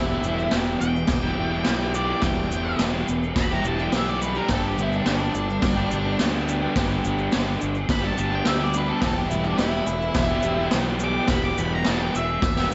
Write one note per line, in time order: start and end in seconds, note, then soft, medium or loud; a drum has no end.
0.00 0.18 E1 medium
0.00 0.52 E2 loud
0.00 0.52 B2 medium
0.00 0.24 E3 loud
0.00 0.25 G3 loud
0.00 0.26 E4 loud
0.00 0.51 E4 loud
0.00 0.27 G4 loud
0.23 0.46 E1 medium
0.23 0.53 E3 medium
0.23 0.54 G3 medium
0.23 0.55 E4 medium
0.23 shaker medium
0.28 0.55 G4 medium
0.39 shaker soft
0.51 0.75 E1 loud
0.51 1.65 E2 medium
0.51 0.95 B2 medium
0.51 0.69 E3 medium
0.51 0.68 G3 medium
0.51 snare loud
0.51 crash medium
0.51 shaker medium
0.55 0.68 E4 medium
0.55 0.66 G4 loud
0.66 0.81 E3 medium
0.66 0.81 G3 medium
0.66 0.82 E4 medium
0.66 0.82 G4 medium
0.81 1.03 E1 medium
0.81 1.91 G5 loud
0.81 muted overdriven electric guitar stroke soft
0.81 shaker loud
0.96 shaker soft
1.07 1.32 E1 loud
1.07 kick loud
1.07 snare loud
1.07 crash medium
1.07 shaker medium
1.23 1.35 E3 medium
1.23 1.38 G3 medium
1.23 1.38 E4 medium
1.23 1.40 G4 medium
1.36 1.60 E1 loud
1.36 1.53 E3 medium
1.36 1.53 G3 medium
1.36 1.52 E4 medium
1.36 1.51 G4 medium
1.51 1.65 E3 medium
1.51 1.67 G3 medium
1.51 1.67 E4 medium
1.51 1.69 G4 medium
1.64 2.12 B1 medium
1.64 2.08 E2 medium
1.64 2.09 B2 medium
1.64 1.82 E3 medium
1.64 1.82 G3 medium
1.64 1.80 E4 loud
1.64 snare loud
1.64 crash medium
1.64 shaker medium
1.69 1.80 G4 medium
1.80 1.93 E3 medium
1.80 1.95 G3 medium
1.80 1.95 E4 medium
1.80 1.97 G4 medium
1.94 2.11 E3 medium
1.94 2.10 G3 medium
1.94 2.09 E4 medium
1.94 2.08 G4 medium
1.94 2.08 D5 loud
1.94 shaker loud
2.08 2.22 E3 medium
2.08 2.24 G3 medium
2.08 2.24 E4 medium
2.08 2.25 G4 medium
2.08 2.23 D5 medium
2.22 2.45 E1 medium
2.22 2.77 E2 medium
2.22 2.78 B2 loud
2.22 2.50 E3 loud
2.22 2.52 G3 loud
2.22 2.52 E4 loud
2.22 2.54 G4 loud
2.22 2.78 G5 loud
2.22 kick loud
2.22 snare loud
2.22 crash medium
2.22 shaker medium
2.50 2.73 E1 medium
2.50 2.79 E3 medium
2.50 2.80 G3 medium
2.50 2.80 E4 medium
2.50 2.81 G4 medium
2.50 shaker loud
2.78 3.02 E1 medium
2.78 3.21 E2 medium
2.78 3.22 B2 medium
2.78 2.94 E3 medium
2.78 2.94 G3 medium
2.78 2.92 E4 loud
2.78 2.92 G4 medium
2.78 snare loud
2.78 crash medium
2.78 shaker medium
2.93 3.07 E3 medium
2.93 3.09 G3 medium
2.93 3.07 E4 medium
2.93 3.09 G4 medium
3.08 3.31 E1 medium
3.08 muted overdriven electric guitar stroke soft
3.08 shaker loud
3.23 shaker soft
3.36 3.59 E1 loud
3.36 3.51 B5 loud
3.36 kick loud
3.36 snare loud
3.36 crash medium
3.36 shaker medium
3.51 3.63 E3 medium
3.51 3.65 G3 medium
3.51 3.65 E4 medium
3.51 3.67 G4 medium
3.51 3.66 A#5 medium
3.64 3.87 E1 medium
3.64 3.81 E3 medium
3.64 3.80 G3 medium
3.64 3.78 E4 medium
3.64 3.78 G4 medium
3.64 3.79 A5 loud
3.64 shaker loud
3.78 3.93 E3 medium
3.78 3.94 G3 medium
3.78 3.94 E4 medium
3.78 3.95 G4 medium
3.78 shaker soft
3.82 3.96 G5 medium
3.92 4.38 B1 medium
3.92 4.35 E2 medium
3.92 4.35 B2 medium
3.92 4.09 E3 medium
3.92 4.09 G3 medium
3.92 4.07 E4 loud
3.92 4.07 G4 medium
3.92 snare loud
3.92 crash medium
3.92 shaker medium
3.96 4.09 E5 loud
4.08 4.20 E3 medium
4.08 4.22 G3 medium
4.08 4.23 E4 medium
4.08 4.24 G4 medium
4.08 4.22 D5 medium
4.21 4.37 E3 medium
4.21 4.37 G3 medium
4.21 4.35 E4 medium
4.21 4.34 G4 medium
4.21 4.37 B4 loud
4.21 shaker loud
4.34 4.49 E3 medium
4.34 4.50 G3 medium
4.34 4.48 E4 medium
4.34 4.52 G4 medium
4.34 4.50 A#4 medium
4.34 shaker soft
4.48 4.72 G1 medium
4.48 5.04 G2 medium
4.48 5.04 D3 loud
4.48 4.77 G3 medium
4.48 4.78 B3 loud
4.48 4.79 D4 loud
4.48 4.80 G4 loud
4.48 4.65 A4 medium
4.48 kick loud
4.48 snare loud
4.48 crash medium
4.48 shaker medium
4.66 4.82 G4 medium
4.77 5.00 G1 loud
4.77 5.06 G3 medium
4.77 5.06 B3 medium
4.77 5.06 D4 medium
4.77 5.07 G4 medium
4.77 shaker loud
4.82 4.95 E4 loud
4.93 5.07 D4 medium
4.93 shaker soft
5.04 5.28 G1 medium
5.04 6.19 G2 medium
5.04 5.48 D3 medium
5.04 5.22 G3 medium
5.04 5.21 B3 loud
5.04 5.19 D4 loud
5.04 5.18 G4 loud
5.04 snare loud
5.04 crash medium
5.04 shaker medium
5.10 6.18 D4 loud
5.18 5.34 G3 soft
5.18 5.34 B3 medium
5.18 5.34 D4 medium
5.18 5.34 G4 medium
5.34 5.57 G1 medium
5.34 muted overdriven electric guitar stroke soft
5.34 shaker loud
5.50 shaker soft
5.62 5.86 G1 medium
5.62 kick loud
5.62 snare loud
5.62 crash medium
5.62 shaker medium
5.76 5.90 G3 medium
5.76 5.91 B3 medium
5.76 5.91 D4 medium
5.76 5.93 G4 medium
5.91 6.14 G1 medium
5.91 6.07 G3 medium
5.91 6.06 B3 medium
5.91 6.04 D4 medium
5.91 6.04 G4 medium
5.91 shaker loud
6.04 6.20 G3 medium
6.04 6.21 B3 soft
6.04 6.20 D4 medium
6.04 6.22 G4 medium
6.19 6.66 D2 medium
6.19 6.62 G2 medium
6.19 6.62 D3 medium
6.19 6.35 G3 medium
6.19 6.35 B3 medium
6.19 6.33 D4 loud
6.19 6.32 G4 medium
6.19 snare loud
6.19 crash medium
6.19 shaker medium
6.32 6.47 G3 medium
6.32 6.48 B3 medium
6.32 6.48 D4 medium
6.32 6.50 G4 medium
6.47 6.64 G3 medium
6.47 6.63 B3 medium
6.47 6.61 D4 medium
6.47 6.61 G4 medium
6.47 shaker loud
6.61 6.77 G3 medium
6.61 6.77 B3 medium
6.61 6.77 D4 medium
6.61 6.78 G4 medium
6.75 6.98 G1 medium
6.75 7.30 G2 medium
6.75 7.31 D3 loud
6.75 7.04 G3 loud
6.75 7.04 B3 medium
6.75 7.05 D4 loud
6.75 7.07 G4 loud
6.75 kick loud
6.75 snare loud
6.75 crash medium
6.75 shaker medium
7.04 7.27 G1 medium
7.04 7.33 G3 medium
7.04 7.34 B3 medium
7.04 7.33 D4 medium
7.04 7.35 G4 medium
7.04 shaker loud
7.18 shaker soft
7.31 7.56 G1 medium
7.31 7.74 G2 loud
7.31 7.75 D3 loud
7.31 7.48 G3 loud
7.31 7.48 B3 loud
7.31 7.45 D4 loud
7.31 snare loud
7.31 crash medium
7.31 shaker medium
7.35 7.45 G4 loud
7.45 7.60 G3 medium
7.45 7.60 B3 medium
7.45 7.59 D4 medium
7.45 7.61 G4 medium
7.60 7.84 G1 medium
7.60 muted overdriven electric guitar stroke soft
7.60 shaker medium
7.75 shaker soft
7.89 8.12 G1 loud
7.89 8.04 B5 loud
7.89 kick loud
7.89 snare loud
7.89 crash medium
7.89 shaker medium
8.02 8.16 G3 medium
8.02 8.16 B3 medium
8.02 8.17 D4 medium
8.02 8.19 G4 medium
8.06 8.18 A5 medium
8.16 8.40 G1 loud
8.16 8.34 G3 medium
8.16 8.33 B3 medium
8.16 8.31 D4 medium
8.16 8.30 G4 loud
8.16 8.35 A5 loud
8.16 shaker medium
8.31 8.45 G3 medium
8.31 8.46 B3 medium
8.31 8.46 D4 medium
8.31 8.48 G4 medium
8.35 8.47 G5 medium
8.45 8.91 D2 medium
8.45 8.88 G2 medium
8.45 8.88 D3 medium
8.45 8.62 G3 loud
8.45 8.61 B3 loud
8.45 8.59 D4 medium
8.45 8.59 G4 loud
8.45 8.60 E5 medium
8.45 snare loud
8.45 crash medium
8.45 shaker medium
8.59 8.73 G3 medium
8.59 8.74 B3 medium
8.59 8.74 D4 medium
8.59 8.76 G4 medium
8.64 8.76 D5 medium
8.73 8.90 G3 medium
8.73 8.90 B3 medium
8.73 8.88 D4 medium
8.73 8.87 G4 loud
8.73 8.89 B4 loud
8.73 shaker loud
8.88 9.02 G3 medium
8.88 9.03 B3 medium
8.88 9.01 D4 medium
8.88 9.04 G4 medium
8.88 9.00 A4 medium
9.01 9.24 E1 medium
9.01 9.57 E2 loud
9.01 9.57 B2 loud
9.01 9.28 E3 medium
9.01 9.30 G3 loud
9.01 9.30 B3 loud
9.01 9.31 G4 loud
9.01 9.17 A4 loud
9.01 kick loud
9.01 snare loud
9.01 crash medium
9.01 shaker medium
9.17 9.28 G4 medium
9.28 9.53 E1 medium
9.28 9.59 E3 medium
9.28 9.59 G3 medium
9.28 9.59 B3 medium
9.28 9.43 E4 loud
9.28 9.60 G4 medium
9.28 shaker medium
9.44 9.58 D4 medium
9.44 shaker soft
9.57 9.81 E1 medium
9.57 10.71 E2 medium
9.57 10.01 B2 loud
9.57 9.75 E3 loud
9.57 9.74 G3 loud
9.57 9.73 B3 loud
9.57 10.68 E4 loud
9.57 9.71 G4 loud
9.57 snare loud
9.57 crash medium
9.57 shaker medium
9.72 9.86 E3 medium
9.72 9.87 G3 medium
9.72 9.87 B3 medium
9.72 9.88 G4 medium
9.86 10.09 E1 medium
9.86 muted overdriven electric guitar stroke soft
9.86 shaker loud
10.02 shaker soft
10.14 10.38 E1 medium
10.14 kick loud
10.14 snare loud
10.14 crash medium
10.14 shaker medium
10.30 10.42 E3 medium
10.30 10.44 G3 medium
10.30 10.44 B3 medium
10.30 10.46 G4 medium
10.43 10.66 E1 medium
10.43 10.60 E3 medium
10.43 10.59 G3 medium
10.43 10.57 B3 medium
10.43 10.57 G4 medium
10.43 shaker loud
10.57 10.73 E3 medium
10.57 10.74 G3 medium
10.57 10.73 B3 medium
10.57 10.75 G4 medium
10.71 11.18 B1 medium
10.71 11.15 E2 medium
10.71 11.15 B2 medium
10.71 10.89 E3 loud
10.71 10.88 G3 medium
10.71 10.86 B3 loud
10.71 10.85 G4 loud
10.71 snare loud
10.71 crash medium
10.71 shaker medium
10.86 11.01 E3 medium
10.86 11.02 G3 medium
10.86 11.02 B3 medium
10.86 11.04 G4 medium
11.00 11.19 E3 medium
11.00 11.18 G3 medium
11.00 11.17 B3 medium
11.00 shaker loud
11.04 11.15 G4 medium
11.04 11.30 D6 loud
11.16 11.29 E3 medium
11.16 11.29 G3 medium
11.16 11.30 B3 medium
11.16 11.30 G4 medium
11.27 11.52 E1 medium
11.27 11.85 E2 loud
11.27 11.85 B2 medium
11.27 11.56 E3 loud
11.27 11.58 G3 loud
11.27 11.59 B3 loud
11.27 11.43 B5 loud
11.27 kick loud
11.27 snare loud
11.27 crash medium
11.27 shaker medium
11.32 11.60 G4 loud
11.44 11.58 D6 medium
11.58 11.81 E1 medium
11.58 11.87 E3 medium
11.58 11.87 G3 medium
11.58 11.88 B3 medium
11.58 11.88 G4 medium
11.58 11.71 B5 loud
11.58 shaker medium
11.75 11.87 A#5 medium
11.84 12.09 E1 loud
11.84 12.28 E2 medium
11.84 12.29 B2 medium
11.84 12.03 E3 medium
11.84 12.01 G3 medium
11.84 12.02 A5 loud
11.84 snare loud
11.84 crash medium
11.84 shaker medium
11.89 12.00 B3 medium
11.89 11.99 G4 medium
12.00 12.15 E3 medium
12.00 12.15 G3 medium
12.00 12.15 B3 medium
12.00 12.15 G4 medium
12.00 12.15 G5 loud
12.15 12.37 E1 medium
12.15 12.74 E5 loud
12.15 muted overdriven electric guitar stroke soft
12.15 shaker loud
12.42 12.65 E1 loud
12.42 kick loud
12.42 snare medium
12.42 shaker medium
12.56 12.72 G3 medium
12.56 12.73 B3 medium
12.56 12.74 G4 medium
12.56 snare medium
12.61 12.71 E3 medium